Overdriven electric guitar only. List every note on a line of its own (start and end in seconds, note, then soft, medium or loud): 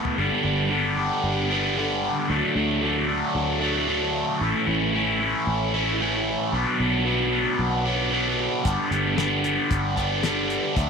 0.00 0.18 A3 medium
0.00 0.18 B3 medium
0.00 0.18 E4 medium
0.00 0.18 A4 medium
0.18 0.71 G2 medium
0.18 0.69 D3 loud
0.18 0.45 G3 medium
0.18 0.44 B3 medium
0.18 0.43 D4 loud
0.44 0.70 G3 medium
0.44 0.71 B3 medium
0.44 0.73 D4 medium
0.70 1.23 D3 medium
0.70 0.98 G3 medium
0.70 0.97 B3 medium
0.70 0.96 D4 medium
0.96 1.52 G3 medium
0.96 1.50 B3 medium
0.96 1.49 D4 medium
1.50 1.77 G3 medium
1.50 1.78 B3 medium
1.50 1.78 D4 medium
1.77 2.28 G2 medium
1.77 2.28 D3 loud
1.77 2.29 G3 loud
1.77 2.29 B3 loud
1.77 2.29 D4 loud
2.29 2.80 D3 medium
2.29 2.58 F#3 loud
2.29 2.57 A3 medium
2.29 2.54 D4 medium
2.56 2.82 F#3 medium
2.56 2.84 A3 medium
2.56 2.83 D4 medium
2.81 3.35 D3 medium
2.81 3.10 F#3 medium
2.81 3.10 A3 medium
2.81 3.07 D4 medium
3.09 3.63 F#3 medium
3.09 3.63 A3 medium
3.09 3.60 D4 medium
3.61 3.87 F#3 medium
3.61 3.89 A3 medium
3.61 3.89 D4 medium
3.87 4.39 D3 medium
3.87 4.40 F#3 loud
3.87 4.43 A3 loud
3.87 4.41 D4 loud
4.41 4.94 A2 medium
4.41 4.92 E3 loud
4.41 4.70 A3 loud
4.41 4.68 C#4 medium
4.41 4.66 E4 loud
4.67 4.94 A3 medium
4.67 4.94 C#4 medium
4.67 4.95 E4 medium
4.93 5.47 E3 medium
4.93 5.23 A3 medium
4.93 5.21 C#4 medium
4.93 5.19 E4 medium
5.20 5.76 A3 medium
5.20 5.74 C#4 medium
5.20 5.72 E4 medium
5.74 6.00 A3 medium
5.74 6.01 C#4 medium
5.74 6.02 E4 medium
6.00 6.51 A2 loud
6.00 6.52 E3 loud
6.00 6.52 A3 loud
6.00 6.53 C#4 loud
6.00 6.53 E4 loud
6.52 7.05 B2 medium
6.52 6.81 F#3 loud
6.52 6.81 B3 loud
6.52 6.79 D4 loud
6.80 7.06 F#3 medium
6.80 7.07 B3 medium
6.80 7.08 D4 medium
7.06 7.59 B2 medium
7.06 7.34 F#3 medium
7.06 7.34 B3 medium
7.06 7.32 D4 medium
7.32 7.87 F#3 medium
7.32 7.86 B3 medium
7.32 7.85 D4 medium
7.85 8.11 F#3 medium
7.85 8.13 B3 medium
7.85 8.14 D4 medium
8.11 8.63 B2 loud
8.11 8.64 F#3 medium
8.11 8.64 B3 loud
8.11 8.67 D4 loud
8.64 9.17 G2 medium
8.64 9.16 D3 loud
8.64 8.93 G3 loud
8.64 8.92 B3 medium
8.64 8.90 D4 loud
8.91 9.17 G3 medium
8.91 9.18 B3 medium
8.91 9.20 D4 medium
9.17 9.70 D3 medium
9.17 9.45 G3 medium
9.17 9.44 B3 medium
9.17 9.43 D4 medium
9.43 9.98 G3 medium
9.43 9.96 B3 medium
9.43 9.95 D4 medium
9.96 10.23 G3 medium
9.96 10.23 B3 medium
9.96 10.24 D4 medium
10.23 10.75 G2 medium
10.23 10.74 D3 loud
10.23 10.75 G3 loud
10.23 10.76 B3 loud
10.23 10.76 D4 loud
10.75 10.90 D3 medium
10.75 10.90 F#3 medium
10.75 10.90 A3 loud
10.75 10.90 D4 medium